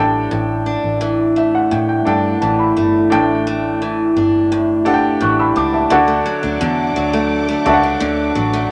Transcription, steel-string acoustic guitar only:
0.00 0.30 A2 medium
0.00 0.34 G3 medium
0.00 0.66 D4 medium
0.31 1.70 A2 medium
0.66 2.06 D4 medium
1.01 2.41 E3 medium
1.36 2.76 A3 medium
1.71 3.11 A2 medium
2.07 3.85 D4 medium
2.42 3.81 E3 medium
2.77 3.46 A3 medium
3.12 4.51 A2 medium
3.47 6.07 A3 medium
3.82 5.19 E3 medium
4.17 5.55 D4 medium
4.52 5.98 A2 medium
4.86 5.98 G4 medium
5.20 5.98 E3 medium
5.56 6.42 D4 medium
5.90 6.60 D3 medium
6.08 7.12 A3 medium
6.26 6.96 F#3 medium
6.43 7.83 D4 medium
6.61 8.00 D3 medium
6.96 7.65 F#3 medium
7.13 7.47 A3 medium
7.49 8.52 A3 medium
7.66 8.35 F#3 medium
7.83 8.71 D4 medium
8.00 8.70 D3 medium
8.35 8.71 F#3 medium
8.53 8.71 A3 medium

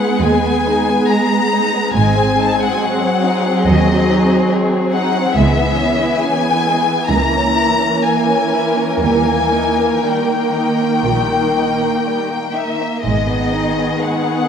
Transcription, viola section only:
0.00 2.77 G#3 soft
0.00 1.91 B3 soft
1.96 5.32 C4 soft
2.81 5.37 F#3 soft
5.36 10.00 E3 soft
5.36 7.12 B3 soft
7.12 12.83 A#3 soft
10.05 12.83 D#3 soft
13.04 14.48 D#3 soft
13.04 14.48 B3 soft

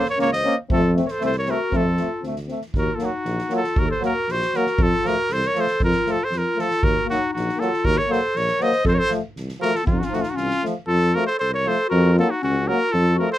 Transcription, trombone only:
0.19 0.29 A#3 medium
0.45 0.55 A#3 medium
0.71 0.81 A3 medium
0.95 1.05 A3 medium
1.20 1.31 A3 medium
1.48 1.58 A3 medium
1.73 1.83 A3 medium
2.00 2.09 A3 medium
2.26 2.36 A3 medium
2.51 2.60 A3 medium
3.00 3.10 F#3 medium
3.51 3.61 F#3 medium
4.00 4.11 F#3 medium
4.54 4.64 F#3 medium
5.04 5.14 F3 medium
5.55 5.65 F3 medium
6.08 6.17 F3 medium
6.58 6.68 F3 medium
7.10 7.20 F#3 medium
7.61 7.70 F#3 medium
8.10 8.20 F#3 medium
8.60 8.70 F#3 medium
9.08 9.19 F3 medium
9.60 9.71 F3 medium
10.11 10.21 F3 medium
10.64 10.74 F3 medium
11.15 11.25 F3 medium
11.66 11.76 F3 medium
12.20 12.29 F#3 medium
12.67 12.77 F#3 medium
13.19 13.29 F3 medium

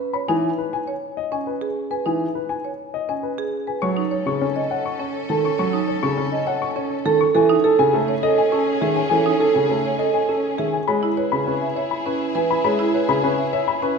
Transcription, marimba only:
0.14 0.33 C#5 medium
0.29 0.48 D#4 medium
0.87 1.07 C#5 medium
1.32 1.51 C#4 medium
1.61 1.80 G#4 medium
1.91 2.10 B4 medium
2.06 2.25 D#4 medium
2.65 2.83 C#5 soft
3.09 3.28 C#4 soft
3.38 3.57 G#4 medium
3.67 3.86 B4 soft
3.82 4.01 C#5 medium
3.97 4.16 D#4 medium
4.11 4.30 C#5 medium
4.56 4.75 D#5 medium
4.70 4.89 C#5 medium
5.00 5.19 C#4 medium
5.29 5.48 A4 medium
5.58 5.77 C#5 medium
5.73 5.92 D#4 medium
5.88 6.07 C#5 medium
6.32 6.51 D#5 medium
6.47 6.66 C#5 medium
6.76 6.95 C#4 medium
7.06 7.25 A4 medium
7.35 7.54 A4 medium
7.49 7.69 D#4 medium
7.64 7.83 A4 medium
8.08 8.27 C#5 medium
8.23 8.42 A4 medium
8.52 8.71 C#4 medium
8.82 9.01 G#4 medium
9.11 9.30 A4 medium
9.26 9.45 D#4 medium
9.40 9.60 A4 medium
9.85 10.04 C#5 medium
9.99 10.19 A4 medium
10.29 10.48 C#4 soft
10.58 10.77 G#4 medium
10.88 11.07 C#5 medium
11.03 11.22 E4 medium
11.17 11.36 C#5 medium
11.61 11.80 E5 medium
11.77 11.95 C#5 medium
12.06 12.25 C#4 medium
12.35 12.54 B4 medium
12.65 12.83 C#5 medium
12.79 12.98 E4 medium
12.94 13.13 C#5 medium
13.38 13.57 E5 medium
13.53 13.72 C#5 medium
13.82 13.98 C#4 medium

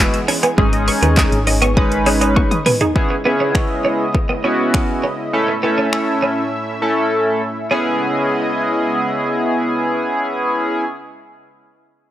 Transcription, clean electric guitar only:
0.28 0.38 C#4 medium
0.43 0.53 B3 medium
0.58 0.68 G#3 medium
0.88 muted clean electric guitar stroke soft
1.03 1.12 B3 medium
1.17 1.27 G#3 medium
1.47 muted clean electric guitar stroke soft
1.62 1.71 B3 medium
1.77 muted clean electric guitar stroke soft
2.06 2.16 C#4 medium
2.21 2.31 C#4 medium
2.36 muted clean electric guitar stroke soft
2.66 2.76 B3 medium
2.81 2.90 D#4 medium
3.10 muted clean electric guitar stroke soft
3.25 3.35 B3 medium
3.40 3.50 C#4 medium
3.85 3.94 C#4 medium
4.15 muted clean electric guitar stroke soft
4.29 4.39 B3 medium
4.44 4.54 C#4 medium
5.04 5.13 C#4 medium
5.48 muted clean electric guitar stroke soft
5.63 5.73 B3 medium
5.78 5.87 C#4 medium
6.22 6.32 C#4 medium
7.71 7.89 C#4 medium

